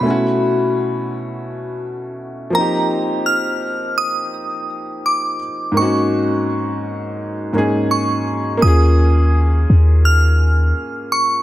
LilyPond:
<<
  \new Staff \with { instrumentName = "Synth bell" } { \time 4/4 \key f \phrygian \tempo 4 = 84 ces'''4. r2 bes''8~ | bes''8 f'''4 ees'''4. d'''4 | des'''2. des'''4 | ees'''2 f'''4. des'''8 | }
  \new Staff \with { instrumentName = "Grand piano" } { \time 4/4 \key f \phrygian <b, a cis' e' fis'>2.~ <b, a cis' e' fis'>8 <f bes c' ees' g'>8~ | <f bes c' ees' g'>2.~ <f bes c' ees' g'>8 r8 | <aes, bes c' des' ees' ges'>2~ <aes, bes c' des' ees' ges'>8 <aes, bes des' ees' aes'>4. | <bes des' f' aes'>1 | }
  \new Staff \with { instrumentName = "808-style bass" } { \clef bass \time 4/4 \key f \phrygian r1 | r1 | r1 | ees,4. ees,4. r4 | }
>>